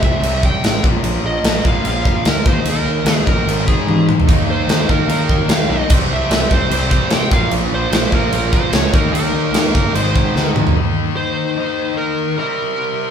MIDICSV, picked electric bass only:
0, 0, Header, 1, 2, 480
1, 0, Start_track
1, 0, Tempo, 405132
1, 1232, Time_signature, 4, 2, 24, 8
1, 15528, End_track
2, 0, Start_track
2, 0, Title_t, "Picked electric bass"
2, 0, Program_c, 0, 34
2, 30, Note_on_c, 0, 36, 87
2, 191, Note_off_c, 0, 36, 0
2, 255, Note_on_c, 0, 36, 105
2, 579, Note_off_c, 0, 36, 0
2, 736, Note_on_c, 0, 33, 86
2, 901, Note_off_c, 0, 33, 0
2, 989, Note_on_c, 0, 34, 90
2, 1149, Note_off_c, 0, 34, 0
2, 1217, Note_on_c, 0, 34, 95
2, 1382, Note_off_c, 0, 34, 0
2, 1456, Note_on_c, 0, 34, 92
2, 1620, Note_off_c, 0, 34, 0
2, 1702, Note_on_c, 0, 34, 99
2, 1864, Note_off_c, 0, 34, 0
2, 1948, Note_on_c, 0, 34, 85
2, 2108, Note_off_c, 0, 34, 0
2, 2185, Note_on_c, 0, 34, 94
2, 2505, Note_off_c, 0, 34, 0
2, 2673, Note_on_c, 0, 38, 89
2, 2831, Note_off_c, 0, 38, 0
2, 2906, Note_on_c, 0, 39, 95
2, 3066, Note_off_c, 0, 39, 0
2, 3137, Note_on_c, 0, 39, 96
2, 3301, Note_off_c, 0, 39, 0
2, 3378, Note_on_c, 0, 39, 93
2, 3541, Note_off_c, 0, 39, 0
2, 3609, Note_on_c, 0, 39, 93
2, 3775, Note_off_c, 0, 39, 0
2, 3874, Note_on_c, 0, 34, 87
2, 4031, Note_off_c, 0, 34, 0
2, 4095, Note_on_c, 0, 32, 97
2, 4418, Note_off_c, 0, 32, 0
2, 4579, Note_on_c, 0, 44, 87
2, 4901, Note_off_c, 0, 44, 0
2, 5074, Note_on_c, 0, 39, 90
2, 5232, Note_off_c, 0, 39, 0
2, 5292, Note_on_c, 0, 39, 91
2, 5457, Note_off_c, 0, 39, 0
2, 5535, Note_on_c, 0, 39, 94
2, 5699, Note_off_c, 0, 39, 0
2, 5792, Note_on_c, 0, 39, 91
2, 5950, Note_off_c, 0, 39, 0
2, 6013, Note_on_c, 0, 39, 93
2, 6337, Note_off_c, 0, 39, 0
2, 6492, Note_on_c, 0, 39, 89
2, 6657, Note_off_c, 0, 39, 0
2, 6739, Note_on_c, 0, 35, 97
2, 6901, Note_off_c, 0, 35, 0
2, 6990, Note_on_c, 0, 36, 99
2, 7149, Note_off_c, 0, 36, 0
2, 7218, Note_on_c, 0, 36, 87
2, 7381, Note_off_c, 0, 36, 0
2, 7459, Note_on_c, 0, 36, 98
2, 7621, Note_off_c, 0, 36, 0
2, 7709, Note_on_c, 0, 36, 92
2, 7868, Note_off_c, 0, 36, 0
2, 7935, Note_on_c, 0, 36, 97
2, 8258, Note_off_c, 0, 36, 0
2, 8426, Note_on_c, 0, 48, 95
2, 8586, Note_off_c, 0, 48, 0
2, 8662, Note_on_c, 0, 34, 93
2, 8824, Note_off_c, 0, 34, 0
2, 8899, Note_on_c, 0, 34, 97
2, 9062, Note_off_c, 0, 34, 0
2, 9133, Note_on_c, 0, 34, 88
2, 9298, Note_off_c, 0, 34, 0
2, 9376, Note_on_c, 0, 34, 99
2, 9540, Note_off_c, 0, 34, 0
2, 9621, Note_on_c, 0, 34, 85
2, 9783, Note_off_c, 0, 34, 0
2, 9856, Note_on_c, 0, 34, 98
2, 10180, Note_off_c, 0, 34, 0
2, 10332, Note_on_c, 0, 37, 90
2, 10498, Note_off_c, 0, 37, 0
2, 10586, Note_on_c, 0, 39, 94
2, 10747, Note_off_c, 0, 39, 0
2, 10808, Note_on_c, 0, 39, 96
2, 10975, Note_off_c, 0, 39, 0
2, 11056, Note_on_c, 0, 39, 92
2, 11220, Note_off_c, 0, 39, 0
2, 11287, Note_on_c, 0, 39, 96
2, 11454, Note_off_c, 0, 39, 0
2, 11547, Note_on_c, 0, 31, 84
2, 11708, Note_off_c, 0, 31, 0
2, 11778, Note_on_c, 0, 32, 96
2, 12101, Note_off_c, 0, 32, 0
2, 12259, Note_on_c, 0, 38, 85
2, 12582, Note_off_c, 0, 38, 0
2, 15528, End_track
0, 0, End_of_file